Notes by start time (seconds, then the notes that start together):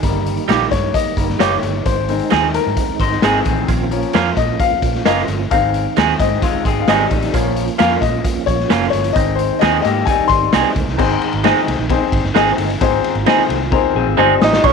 Already playing: D#3
0.02 G1 D#3 G3 A#3 D#4, kick, closed hi-hat
0.26 closed hi-hat
0.37 closed hi-hat
0.48 A#1 G3 A#3 D#4 G4, snare, closed hi-hat
0.71 G2 C#5, kick, closed hi-hat
0.94 D#5, kick, closed hi-hat
1.06 muted fingered electric bass stroke
1.17 G1 D#3 G3 A#3, kick, closed hi-hat
1.30 snare
1.39 F#1 G3 A#3 D#4 G4 C#5, snare, closed hi-hat
1.62 G1, closed hi-hat
1.85 G#1 G#3 C4 C5, kick, closed hi-hat
2.09 D#3 G#3 C4, closed hi-hat
2.19 closed hi-hat
2.30 D#2 G#3 C4 D#4 G#4, snare, closed hi-hat
2.54 A#4, closed hi-hat
2.67 G#2
2.77 kick, closed hi-hat
2.89 muted fingered electric bass stroke
3.00 G#1 D#4 C5, kick, closed hi-hat
3.12 snare
3.22 G#1 G#3 C4 D#4 G#4, snare, closed hi-hat
3.45 A1 D#3 C4, kick, closed hi-hat
3.68 A#1 F3 A#3 C#4 F4, kick, closed hi-hat
3.91 F3 A#3 C#4, closed hi-hat
4.03 closed hi-hat
4.13 F2 A#3 C#4 F4 A#4, snare, closed hi-hat
4.37 A#2 D#5, kick, closed hi-hat
4.60 F5, kick, closed hi-hat
4.72 muted fingered electric bass stroke
4.82 A#1, kick, closed hi-hat
4.95 snare
5.05 F#1 A#3 C#4 F4 A#4 D#5, snare, closed hi-hat
5.28 G1, closed hi-hat
5.50 G#1 D#3 G#3 C4 D#4 F5, kick, closed hi-hat
5.74 closed hi-hat
5.97 D#2 G#3 C4 D#4 G#4, snare, closed hi-hat
6.19 G#2 D#3 G#3 C4 D#5, kick, closed hi-hat
6.42 G#3 F4, kick, closed hi-hat
6.54 muted fingered electric bass stroke
6.65 G#1 C4 G#4, kick, closed hi-hat
6.81 F5
6.88 G#1 G3 G#3 C4 D#4 G#4 D#5, snare, closed hi-hat
7.11 A1, kick, closed hi-hat
7.22 snare, closed hi-hat
7.33 A#1 F3 A#3 C#4 F4, kick, closed hi-hat
7.56 closed hi-hat
7.67 closed hi-hat
7.78 F2 A#3 C#4 F4 A#4 F5, snare, closed hi-hat
8.01 A#2 D#5, kick, closed hi-hat
8.25 kick, closed hi-hat
8.37 muted fingered electric bass stroke
8.46 A#1 C#5, kick, closed hi-hat
8.60 snare
8.70 F#1 A#3 C#4 F4 A#4, snare, closed hi-hat
8.90 G1 C#5, closed hi-hat
9.04 closed hi-hat
9.13 G#1 D#3 G#3 C4 D#4 D#5, kick, closed hi-hat
9.36 C5, closed hi-hat
9.59 D#2 G#3 C4 D#4 G#4 D#5, snare, closed hi-hat
9.63 G#4
9.82 G#2 A#3 G4 D#5, snare, closed hi-hat
10.05 G3 D#4 G#5, kick, closed hi-hat
10.19 muted fingered electric bass stroke
10.28 G#1 C6, kick, closed hi-hat
10.53 C2 G#3 C4 D#4 G#4, snare, closed hi-hat
10.76 C#2, kick, closed hi-hat
10.87 C2, snare
10.97 G#1 G#2 D#3 C4 D#4 G#4 C5, kick, crash
11.22 ride
11.33 G#1, ride
11.44 G#3 C4 D#4 G#4 D#5, snare, ride
11.68 C2, snare, ride
11.79 A#1
11.90 C4 D#4 G#4 C5, kick, ride
12.12 G#1, kick, ride
12.24 G1, snare
12.35 G#1 G#3 C4 D#4 G#4 D#5, snare, ride
12.58 G1, open hi-hat, ride
12.70 ride
12.81 G#1 G#2 C4 D#4 F4 G#4 C5, kick, hi-hat pedal, ride
13.04 ride
13.15 G#1, ride
13.26 G#3 C4 D#4 G#4 C5, snare, ride
13.39 muted fingered electric bass stroke
13.49 C2, ride
13.72 C4 D#4 G#4 A#4 C5, kick
13.95 A#1 C4 G#4
14.07 G#1
14.17 G1 G3 G#3 C4 D#4 G#4 C5 G#5
14.42 A1 D#4 D#6, snare
14.53 snare
14.63 A#1 A#2 F3 A#3 C#4 F4 A#4 C#5 C#6, kick, ride